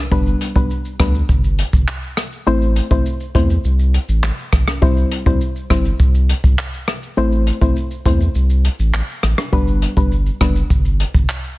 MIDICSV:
0, 0, Header, 1, 4, 480
1, 0, Start_track
1, 0, Key_signature, 1, "major"
1, 0, Tempo, 588235
1, 94, Time_signature, 4, 2, 24, 8
1, 9449, End_track
2, 0, Start_track
2, 0, Title_t, "Synth pluck"
2, 0, Program_c, 0, 84
2, 92, Note_on_c, 0, 55, 93
2, 94, Note_on_c, 0, 59, 87
2, 96, Note_on_c, 0, 62, 87
2, 97, Note_on_c, 0, 71, 109
2, 424, Note_off_c, 0, 55, 0
2, 425, Note_off_c, 0, 59, 0
2, 426, Note_off_c, 0, 62, 0
2, 427, Note_off_c, 0, 71, 0
2, 452, Note_on_c, 0, 55, 77
2, 453, Note_on_c, 0, 59, 70
2, 455, Note_on_c, 0, 62, 70
2, 457, Note_on_c, 0, 71, 83
2, 571, Note_off_c, 0, 55, 0
2, 572, Note_off_c, 0, 59, 0
2, 572, Note_off_c, 0, 62, 0
2, 573, Note_off_c, 0, 71, 0
2, 813, Note_on_c, 0, 55, 80
2, 814, Note_on_c, 0, 59, 76
2, 816, Note_on_c, 0, 62, 73
2, 818, Note_on_c, 0, 71, 88
2, 931, Note_off_c, 0, 55, 0
2, 932, Note_off_c, 0, 59, 0
2, 933, Note_off_c, 0, 62, 0
2, 934, Note_off_c, 0, 71, 0
2, 2012, Note_on_c, 0, 57, 93
2, 2014, Note_on_c, 0, 60, 85
2, 2015, Note_on_c, 0, 64, 85
2, 2017, Note_on_c, 0, 72, 108
2, 2344, Note_off_c, 0, 57, 0
2, 2345, Note_off_c, 0, 60, 0
2, 2346, Note_off_c, 0, 64, 0
2, 2347, Note_off_c, 0, 72, 0
2, 2372, Note_on_c, 0, 57, 76
2, 2373, Note_on_c, 0, 60, 72
2, 2374, Note_on_c, 0, 64, 68
2, 2376, Note_on_c, 0, 72, 90
2, 2491, Note_off_c, 0, 57, 0
2, 2491, Note_off_c, 0, 60, 0
2, 2492, Note_off_c, 0, 64, 0
2, 2493, Note_off_c, 0, 72, 0
2, 2731, Note_on_c, 0, 57, 77
2, 2733, Note_on_c, 0, 60, 75
2, 2735, Note_on_c, 0, 64, 72
2, 2737, Note_on_c, 0, 72, 89
2, 2850, Note_off_c, 0, 57, 0
2, 2851, Note_off_c, 0, 60, 0
2, 2852, Note_off_c, 0, 64, 0
2, 2853, Note_off_c, 0, 72, 0
2, 3931, Note_on_c, 0, 55, 92
2, 3933, Note_on_c, 0, 60, 86
2, 3935, Note_on_c, 0, 64, 86
2, 3936, Note_on_c, 0, 72, 103
2, 4264, Note_off_c, 0, 55, 0
2, 4265, Note_off_c, 0, 60, 0
2, 4266, Note_off_c, 0, 64, 0
2, 4266, Note_off_c, 0, 72, 0
2, 4292, Note_on_c, 0, 55, 79
2, 4294, Note_on_c, 0, 60, 69
2, 4296, Note_on_c, 0, 64, 74
2, 4297, Note_on_c, 0, 72, 87
2, 4411, Note_off_c, 0, 55, 0
2, 4412, Note_off_c, 0, 60, 0
2, 4413, Note_off_c, 0, 64, 0
2, 4413, Note_off_c, 0, 72, 0
2, 4652, Note_on_c, 0, 55, 79
2, 4654, Note_on_c, 0, 60, 74
2, 4656, Note_on_c, 0, 64, 72
2, 4658, Note_on_c, 0, 72, 86
2, 4771, Note_off_c, 0, 55, 0
2, 4772, Note_off_c, 0, 60, 0
2, 4773, Note_off_c, 0, 64, 0
2, 4774, Note_off_c, 0, 72, 0
2, 5852, Note_on_c, 0, 57, 97
2, 5854, Note_on_c, 0, 60, 86
2, 5856, Note_on_c, 0, 64, 87
2, 5857, Note_on_c, 0, 72, 103
2, 6184, Note_off_c, 0, 57, 0
2, 6185, Note_off_c, 0, 60, 0
2, 6186, Note_off_c, 0, 64, 0
2, 6187, Note_off_c, 0, 72, 0
2, 6212, Note_on_c, 0, 57, 76
2, 6214, Note_on_c, 0, 60, 68
2, 6216, Note_on_c, 0, 64, 74
2, 6217, Note_on_c, 0, 72, 82
2, 6331, Note_off_c, 0, 57, 0
2, 6332, Note_off_c, 0, 60, 0
2, 6333, Note_off_c, 0, 64, 0
2, 6334, Note_off_c, 0, 72, 0
2, 6573, Note_on_c, 0, 57, 75
2, 6575, Note_on_c, 0, 60, 74
2, 6576, Note_on_c, 0, 64, 74
2, 6578, Note_on_c, 0, 72, 89
2, 6692, Note_off_c, 0, 57, 0
2, 6692, Note_off_c, 0, 60, 0
2, 6693, Note_off_c, 0, 64, 0
2, 6694, Note_off_c, 0, 72, 0
2, 7771, Note_on_c, 0, 55, 93
2, 7773, Note_on_c, 0, 59, 85
2, 7775, Note_on_c, 0, 62, 90
2, 7776, Note_on_c, 0, 71, 108
2, 8104, Note_off_c, 0, 55, 0
2, 8105, Note_off_c, 0, 59, 0
2, 8106, Note_off_c, 0, 62, 0
2, 8106, Note_off_c, 0, 71, 0
2, 8134, Note_on_c, 0, 55, 79
2, 8135, Note_on_c, 0, 59, 68
2, 8137, Note_on_c, 0, 62, 70
2, 8138, Note_on_c, 0, 71, 86
2, 8252, Note_off_c, 0, 55, 0
2, 8252, Note_off_c, 0, 59, 0
2, 8253, Note_off_c, 0, 62, 0
2, 8254, Note_off_c, 0, 71, 0
2, 8492, Note_on_c, 0, 55, 75
2, 8494, Note_on_c, 0, 59, 74
2, 8496, Note_on_c, 0, 62, 74
2, 8497, Note_on_c, 0, 71, 86
2, 8611, Note_off_c, 0, 55, 0
2, 8612, Note_off_c, 0, 59, 0
2, 8613, Note_off_c, 0, 62, 0
2, 8614, Note_off_c, 0, 71, 0
2, 9449, End_track
3, 0, Start_track
3, 0, Title_t, "Sub bass"
3, 0, Program_c, 1, 38
3, 94, Note_on_c, 1, 31, 117
3, 278, Note_off_c, 1, 31, 0
3, 454, Note_on_c, 1, 35, 89
3, 546, Note_off_c, 1, 35, 0
3, 812, Note_on_c, 1, 38, 98
3, 996, Note_off_c, 1, 38, 0
3, 1054, Note_on_c, 1, 31, 90
3, 1329, Note_off_c, 1, 31, 0
3, 1414, Note_on_c, 1, 31, 94
3, 1506, Note_off_c, 1, 31, 0
3, 2014, Note_on_c, 1, 33, 110
3, 2289, Note_off_c, 1, 33, 0
3, 2374, Note_on_c, 1, 33, 85
3, 2465, Note_off_c, 1, 33, 0
3, 2733, Note_on_c, 1, 40, 95
3, 2916, Note_off_c, 1, 40, 0
3, 2975, Note_on_c, 1, 36, 95
3, 3249, Note_off_c, 1, 36, 0
3, 3334, Note_on_c, 1, 33, 90
3, 3517, Note_off_c, 1, 33, 0
3, 3694, Note_on_c, 1, 33, 94
3, 3786, Note_off_c, 1, 33, 0
3, 3935, Note_on_c, 1, 36, 110
3, 4118, Note_off_c, 1, 36, 0
3, 4294, Note_on_c, 1, 38, 98
3, 4386, Note_off_c, 1, 38, 0
3, 4653, Note_on_c, 1, 31, 96
3, 4836, Note_off_c, 1, 31, 0
3, 4893, Note_on_c, 1, 36, 96
3, 5168, Note_off_c, 1, 36, 0
3, 5253, Note_on_c, 1, 36, 91
3, 5345, Note_off_c, 1, 36, 0
3, 5854, Note_on_c, 1, 33, 117
3, 6129, Note_off_c, 1, 33, 0
3, 6214, Note_on_c, 1, 33, 93
3, 6306, Note_off_c, 1, 33, 0
3, 6573, Note_on_c, 1, 40, 99
3, 6756, Note_off_c, 1, 40, 0
3, 6815, Note_on_c, 1, 36, 98
3, 7089, Note_off_c, 1, 36, 0
3, 7175, Note_on_c, 1, 33, 91
3, 7358, Note_off_c, 1, 33, 0
3, 7534, Note_on_c, 1, 33, 100
3, 7626, Note_off_c, 1, 33, 0
3, 7774, Note_on_c, 1, 31, 108
3, 8049, Note_off_c, 1, 31, 0
3, 8134, Note_on_c, 1, 31, 104
3, 8409, Note_off_c, 1, 31, 0
3, 8493, Note_on_c, 1, 30, 94
3, 8677, Note_off_c, 1, 30, 0
3, 8734, Note_on_c, 1, 31, 105
3, 9009, Note_off_c, 1, 31, 0
3, 9094, Note_on_c, 1, 31, 94
3, 9185, Note_off_c, 1, 31, 0
3, 9449, End_track
4, 0, Start_track
4, 0, Title_t, "Drums"
4, 94, Note_on_c, 9, 36, 110
4, 94, Note_on_c, 9, 82, 65
4, 95, Note_off_c, 9, 82, 0
4, 95, Note_on_c, 9, 82, 73
4, 176, Note_off_c, 9, 36, 0
4, 177, Note_off_c, 9, 82, 0
4, 214, Note_on_c, 9, 82, 55
4, 216, Note_off_c, 9, 82, 0
4, 216, Note_on_c, 9, 82, 49
4, 298, Note_off_c, 9, 82, 0
4, 335, Note_on_c, 9, 42, 73
4, 335, Note_on_c, 9, 82, 56
4, 416, Note_off_c, 9, 42, 0
4, 416, Note_off_c, 9, 82, 0
4, 454, Note_on_c, 9, 36, 91
4, 454, Note_on_c, 9, 82, 63
4, 455, Note_off_c, 9, 82, 0
4, 455, Note_on_c, 9, 82, 70
4, 535, Note_off_c, 9, 36, 0
4, 537, Note_off_c, 9, 82, 0
4, 573, Note_on_c, 9, 82, 73
4, 576, Note_off_c, 9, 82, 0
4, 576, Note_on_c, 9, 82, 74
4, 658, Note_off_c, 9, 82, 0
4, 693, Note_on_c, 9, 82, 44
4, 695, Note_off_c, 9, 82, 0
4, 695, Note_on_c, 9, 82, 50
4, 776, Note_off_c, 9, 82, 0
4, 812, Note_on_c, 9, 36, 88
4, 813, Note_on_c, 9, 37, 86
4, 816, Note_on_c, 9, 42, 78
4, 816, Note_on_c, 9, 82, 55
4, 894, Note_off_c, 9, 36, 0
4, 894, Note_off_c, 9, 37, 0
4, 898, Note_off_c, 9, 42, 0
4, 898, Note_off_c, 9, 82, 0
4, 934, Note_on_c, 9, 82, 74
4, 935, Note_off_c, 9, 82, 0
4, 935, Note_on_c, 9, 82, 70
4, 1017, Note_off_c, 9, 82, 0
4, 1051, Note_on_c, 9, 82, 81
4, 1053, Note_on_c, 9, 36, 98
4, 1055, Note_off_c, 9, 82, 0
4, 1055, Note_on_c, 9, 82, 66
4, 1135, Note_off_c, 9, 36, 0
4, 1137, Note_off_c, 9, 82, 0
4, 1174, Note_on_c, 9, 82, 52
4, 1175, Note_off_c, 9, 82, 0
4, 1175, Note_on_c, 9, 82, 57
4, 1257, Note_off_c, 9, 82, 0
4, 1295, Note_on_c, 9, 42, 75
4, 1295, Note_on_c, 9, 82, 54
4, 1377, Note_off_c, 9, 42, 0
4, 1377, Note_off_c, 9, 82, 0
4, 1414, Note_on_c, 9, 36, 92
4, 1414, Note_on_c, 9, 82, 72
4, 1416, Note_off_c, 9, 82, 0
4, 1416, Note_on_c, 9, 82, 76
4, 1495, Note_off_c, 9, 36, 0
4, 1498, Note_off_c, 9, 82, 0
4, 1534, Note_on_c, 9, 82, 76
4, 1535, Note_off_c, 9, 82, 0
4, 1535, Note_on_c, 9, 39, 89
4, 1535, Note_on_c, 9, 82, 65
4, 1616, Note_off_c, 9, 82, 0
4, 1617, Note_off_c, 9, 39, 0
4, 1653, Note_on_c, 9, 82, 53
4, 1655, Note_off_c, 9, 82, 0
4, 1655, Note_on_c, 9, 82, 49
4, 1736, Note_off_c, 9, 82, 0
4, 1772, Note_on_c, 9, 37, 89
4, 1774, Note_on_c, 9, 42, 74
4, 1774, Note_on_c, 9, 82, 52
4, 1853, Note_off_c, 9, 37, 0
4, 1856, Note_off_c, 9, 42, 0
4, 1856, Note_off_c, 9, 82, 0
4, 1895, Note_on_c, 9, 82, 57
4, 1976, Note_off_c, 9, 82, 0
4, 2014, Note_on_c, 9, 82, 66
4, 2096, Note_off_c, 9, 82, 0
4, 2133, Note_on_c, 9, 82, 53
4, 2136, Note_off_c, 9, 82, 0
4, 2136, Note_on_c, 9, 82, 46
4, 2217, Note_off_c, 9, 82, 0
4, 2254, Note_on_c, 9, 42, 76
4, 2254, Note_on_c, 9, 82, 53
4, 2335, Note_off_c, 9, 42, 0
4, 2335, Note_off_c, 9, 82, 0
4, 2374, Note_on_c, 9, 36, 92
4, 2374, Note_on_c, 9, 82, 62
4, 2375, Note_off_c, 9, 82, 0
4, 2375, Note_on_c, 9, 82, 73
4, 2455, Note_off_c, 9, 36, 0
4, 2456, Note_off_c, 9, 82, 0
4, 2494, Note_on_c, 9, 82, 70
4, 2496, Note_off_c, 9, 82, 0
4, 2496, Note_on_c, 9, 82, 79
4, 2578, Note_off_c, 9, 82, 0
4, 2613, Note_on_c, 9, 82, 45
4, 2614, Note_off_c, 9, 82, 0
4, 2614, Note_on_c, 9, 82, 52
4, 2695, Note_off_c, 9, 82, 0
4, 2733, Note_on_c, 9, 36, 85
4, 2737, Note_on_c, 9, 42, 74
4, 2737, Note_on_c, 9, 82, 56
4, 2814, Note_off_c, 9, 36, 0
4, 2818, Note_off_c, 9, 42, 0
4, 2818, Note_off_c, 9, 82, 0
4, 2855, Note_on_c, 9, 82, 71
4, 2937, Note_off_c, 9, 82, 0
4, 2972, Note_on_c, 9, 82, 82
4, 2974, Note_off_c, 9, 82, 0
4, 2974, Note_on_c, 9, 82, 65
4, 3056, Note_off_c, 9, 82, 0
4, 3094, Note_on_c, 9, 82, 52
4, 3176, Note_off_c, 9, 82, 0
4, 3217, Note_on_c, 9, 42, 73
4, 3217, Note_on_c, 9, 82, 57
4, 3299, Note_off_c, 9, 42, 0
4, 3299, Note_off_c, 9, 82, 0
4, 3334, Note_on_c, 9, 82, 67
4, 3335, Note_off_c, 9, 82, 0
4, 3335, Note_on_c, 9, 82, 82
4, 3417, Note_off_c, 9, 82, 0
4, 3453, Note_on_c, 9, 82, 80
4, 3455, Note_off_c, 9, 82, 0
4, 3455, Note_on_c, 9, 82, 71
4, 3456, Note_on_c, 9, 37, 88
4, 3456, Note_on_c, 9, 39, 91
4, 3537, Note_off_c, 9, 37, 0
4, 3537, Note_off_c, 9, 39, 0
4, 3537, Note_off_c, 9, 82, 0
4, 3574, Note_on_c, 9, 82, 50
4, 3575, Note_off_c, 9, 82, 0
4, 3575, Note_on_c, 9, 82, 51
4, 3656, Note_off_c, 9, 82, 0
4, 3693, Note_on_c, 9, 37, 91
4, 3694, Note_on_c, 9, 36, 95
4, 3695, Note_on_c, 9, 42, 73
4, 3695, Note_on_c, 9, 82, 50
4, 3775, Note_off_c, 9, 36, 0
4, 3775, Note_off_c, 9, 37, 0
4, 3777, Note_off_c, 9, 42, 0
4, 3777, Note_off_c, 9, 82, 0
4, 3814, Note_on_c, 9, 65, 60
4, 3814, Note_on_c, 9, 82, 60
4, 3815, Note_on_c, 9, 37, 94
4, 3816, Note_off_c, 9, 82, 0
4, 3816, Note_on_c, 9, 82, 78
4, 3896, Note_off_c, 9, 65, 0
4, 3897, Note_off_c, 9, 37, 0
4, 3897, Note_off_c, 9, 82, 0
4, 3934, Note_on_c, 9, 36, 117
4, 3934, Note_on_c, 9, 82, 68
4, 3935, Note_off_c, 9, 82, 0
4, 3935, Note_on_c, 9, 82, 75
4, 4016, Note_off_c, 9, 36, 0
4, 4016, Note_off_c, 9, 82, 0
4, 4054, Note_on_c, 9, 82, 53
4, 4056, Note_off_c, 9, 82, 0
4, 4056, Note_on_c, 9, 82, 45
4, 4137, Note_off_c, 9, 82, 0
4, 4174, Note_on_c, 9, 42, 74
4, 4174, Note_on_c, 9, 82, 57
4, 4256, Note_off_c, 9, 42, 0
4, 4256, Note_off_c, 9, 82, 0
4, 4294, Note_on_c, 9, 36, 97
4, 4294, Note_on_c, 9, 82, 70
4, 4375, Note_off_c, 9, 36, 0
4, 4376, Note_off_c, 9, 82, 0
4, 4414, Note_on_c, 9, 82, 71
4, 4415, Note_off_c, 9, 82, 0
4, 4415, Note_on_c, 9, 82, 74
4, 4497, Note_off_c, 9, 82, 0
4, 4534, Note_on_c, 9, 82, 51
4, 4616, Note_off_c, 9, 82, 0
4, 4653, Note_on_c, 9, 36, 83
4, 4654, Note_on_c, 9, 37, 83
4, 4657, Note_on_c, 9, 42, 72
4, 4657, Note_on_c, 9, 82, 52
4, 4734, Note_off_c, 9, 36, 0
4, 4735, Note_off_c, 9, 37, 0
4, 4739, Note_off_c, 9, 42, 0
4, 4739, Note_off_c, 9, 82, 0
4, 4775, Note_on_c, 9, 82, 71
4, 4857, Note_off_c, 9, 82, 0
4, 4892, Note_on_c, 9, 82, 84
4, 4893, Note_on_c, 9, 36, 95
4, 4895, Note_off_c, 9, 82, 0
4, 4895, Note_on_c, 9, 82, 69
4, 4975, Note_off_c, 9, 36, 0
4, 4976, Note_off_c, 9, 82, 0
4, 5014, Note_on_c, 9, 82, 61
4, 5096, Note_off_c, 9, 82, 0
4, 5136, Note_on_c, 9, 42, 78
4, 5136, Note_on_c, 9, 82, 55
4, 5218, Note_off_c, 9, 42, 0
4, 5218, Note_off_c, 9, 82, 0
4, 5254, Note_on_c, 9, 36, 91
4, 5254, Note_on_c, 9, 82, 72
4, 5256, Note_off_c, 9, 82, 0
4, 5256, Note_on_c, 9, 82, 75
4, 5335, Note_off_c, 9, 36, 0
4, 5338, Note_off_c, 9, 82, 0
4, 5373, Note_on_c, 9, 82, 81
4, 5375, Note_off_c, 9, 82, 0
4, 5375, Note_on_c, 9, 39, 88
4, 5375, Note_on_c, 9, 82, 69
4, 5456, Note_off_c, 9, 82, 0
4, 5457, Note_off_c, 9, 39, 0
4, 5494, Note_on_c, 9, 82, 52
4, 5576, Note_off_c, 9, 82, 0
4, 5612, Note_on_c, 9, 37, 89
4, 5614, Note_on_c, 9, 42, 72
4, 5614, Note_on_c, 9, 82, 51
4, 5694, Note_off_c, 9, 37, 0
4, 5696, Note_off_c, 9, 42, 0
4, 5696, Note_off_c, 9, 82, 0
4, 5734, Note_on_c, 9, 82, 58
4, 5735, Note_off_c, 9, 82, 0
4, 5735, Note_on_c, 9, 82, 81
4, 5817, Note_off_c, 9, 82, 0
4, 5854, Note_on_c, 9, 82, 69
4, 5935, Note_off_c, 9, 82, 0
4, 5973, Note_on_c, 9, 82, 54
4, 5975, Note_off_c, 9, 82, 0
4, 5975, Note_on_c, 9, 82, 47
4, 6056, Note_off_c, 9, 82, 0
4, 6094, Note_on_c, 9, 42, 78
4, 6094, Note_on_c, 9, 82, 54
4, 6176, Note_off_c, 9, 42, 0
4, 6176, Note_off_c, 9, 82, 0
4, 6214, Note_on_c, 9, 36, 93
4, 6214, Note_on_c, 9, 82, 62
4, 6295, Note_off_c, 9, 36, 0
4, 6296, Note_off_c, 9, 82, 0
4, 6334, Note_on_c, 9, 82, 70
4, 6335, Note_off_c, 9, 82, 0
4, 6335, Note_on_c, 9, 82, 77
4, 6417, Note_off_c, 9, 82, 0
4, 6453, Note_on_c, 9, 82, 51
4, 6454, Note_off_c, 9, 82, 0
4, 6454, Note_on_c, 9, 82, 47
4, 6536, Note_off_c, 9, 82, 0
4, 6573, Note_on_c, 9, 36, 84
4, 6578, Note_on_c, 9, 42, 71
4, 6578, Note_on_c, 9, 82, 55
4, 6655, Note_off_c, 9, 36, 0
4, 6659, Note_off_c, 9, 42, 0
4, 6659, Note_off_c, 9, 82, 0
4, 6695, Note_on_c, 9, 82, 71
4, 6696, Note_off_c, 9, 82, 0
4, 6696, Note_on_c, 9, 82, 73
4, 6777, Note_off_c, 9, 82, 0
4, 6813, Note_on_c, 9, 82, 84
4, 6814, Note_off_c, 9, 82, 0
4, 6814, Note_on_c, 9, 82, 70
4, 6896, Note_off_c, 9, 82, 0
4, 6934, Note_on_c, 9, 82, 59
4, 6935, Note_off_c, 9, 82, 0
4, 6935, Note_on_c, 9, 82, 52
4, 7016, Note_off_c, 9, 82, 0
4, 7057, Note_on_c, 9, 42, 77
4, 7057, Note_on_c, 9, 82, 54
4, 7139, Note_off_c, 9, 42, 0
4, 7139, Note_off_c, 9, 82, 0
4, 7175, Note_on_c, 9, 82, 73
4, 7176, Note_off_c, 9, 82, 0
4, 7176, Note_on_c, 9, 82, 76
4, 7257, Note_off_c, 9, 82, 0
4, 7293, Note_on_c, 9, 82, 80
4, 7295, Note_off_c, 9, 82, 0
4, 7295, Note_on_c, 9, 37, 85
4, 7295, Note_on_c, 9, 39, 90
4, 7295, Note_on_c, 9, 82, 68
4, 7376, Note_off_c, 9, 82, 0
4, 7377, Note_off_c, 9, 37, 0
4, 7377, Note_off_c, 9, 39, 0
4, 7415, Note_on_c, 9, 82, 52
4, 7416, Note_off_c, 9, 82, 0
4, 7416, Note_on_c, 9, 82, 49
4, 7497, Note_off_c, 9, 82, 0
4, 7533, Note_on_c, 9, 37, 92
4, 7535, Note_on_c, 9, 42, 75
4, 7535, Note_on_c, 9, 82, 50
4, 7614, Note_off_c, 9, 37, 0
4, 7616, Note_off_c, 9, 42, 0
4, 7616, Note_off_c, 9, 82, 0
4, 7655, Note_on_c, 9, 37, 90
4, 7655, Note_on_c, 9, 65, 60
4, 7655, Note_on_c, 9, 82, 79
4, 7736, Note_off_c, 9, 65, 0
4, 7737, Note_off_c, 9, 37, 0
4, 7737, Note_off_c, 9, 82, 0
4, 7774, Note_on_c, 9, 36, 110
4, 7774, Note_on_c, 9, 82, 72
4, 7856, Note_off_c, 9, 36, 0
4, 7856, Note_off_c, 9, 82, 0
4, 7894, Note_on_c, 9, 82, 54
4, 7895, Note_off_c, 9, 82, 0
4, 7895, Note_on_c, 9, 82, 48
4, 7977, Note_off_c, 9, 82, 0
4, 8015, Note_on_c, 9, 42, 79
4, 8015, Note_on_c, 9, 82, 56
4, 8096, Note_off_c, 9, 42, 0
4, 8096, Note_off_c, 9, 82, 0
4, 8134, Note_on_c, 9, 36, 90
4, 8134, Note_on_c, 9, 82, 73
4, 8135, Note_off_c, 9, 82, 0
4, 8135, Note_on_c, 9, 82, 66
4, 8216, Note_off_c, 9, 36, 0
4, 8217, Note_off_c, 9, 82, 0
4, 8254, Note_on_c, 9, 82, 74
4, 8255, Note_off_c, 9, 82, 0
4, 8255, Note_on_c, 9, 82, 75
4, 8337, Note_off_c, 9, 82, 0
4, 8374, Note_on_c, 9, 82, 50
4, 8375, Note_off_c, 9, 82, 0
4, 8375, Note_on_c, 9, 82, 47
4, 8456, Note_off_c, 9, 82, 0
4, 8493, Note_on_c, 9, 36, 89
4, 8494, Note_on_c, 9, 37, 87
4, 8497, Note_on_c, 9, 42, 76
4, 8497, Note_on_c, 9, 82, 52
4, 8575, Note_off_c, 9, 36, 0
4, 8576, Note_off_c, 9, 37, 0
4, 8579, Note_off_c, 9, 42, 0
4, 8579, Note_off_c, 9, 82, 0
4, 8614, Note_on_c, 9, 82, 72
4, 8615, Note_off_c, 9, 82, 0
4, 8615, Note_on_c, 9, 82, 72
4, 8696, Note_off_c, 9, 82, 0
4, 8732, Note_on_c, 9, 82, 82
4, 8734, Note_off_c, 9, 82, 0
4, 8734, Note_on_c, 9, 36, 94
4, 8734, Note_on_c, 9, 82, 65
4, 8815, Note_off_c, 9, 36, 0
4, 8816, Note_off_c, 9, 82, 0
4, 8853, Note_on_c, 9, 82, 57
4, 8854, Note_off_c, 9, 82, 0
4, 8854, Note_on_c, 9, 82, 51
4, 8936, Note_off_c, 9, 82, 0
4, 8977, Note_on_c, 9, 42, 78
4, 8977, Note_on_c, 9, 82, 54
4, 9058, Note_off_c, 9, 42, 0
4, 9058, Note_off_c, 9, 82, 0
4, 9094, Note_on_c, 9, 36, 95
4, 9094, Note_on_c, 9, 82, 69
4, 9095, Note_off_c, 9, 82, 0
4, 9095, Note_on_c, 9, 82, 80
4, 9176, Note_off_c, 9, 36, 0
4, 9177, Note_off_c, 9, 82, 0
4, 9213, Note_on_c, 9, 82, 79
4, 9215, Note_off_c, 9, 82, 0
4, 9215, Note_on_c, 9, 82, 67
4, 9216, Note_on_c, 9, 39, 91
4, 9297, Note_off_c, 9, 39, 0
4, 9297, Note_off_c, 9, 82, 0
4, 9334, Note_on_c, 9, 82, 54
4, 9416, Note_off_c, 9, 82, 0
4, 9449, End_track
0, 0, End_of_file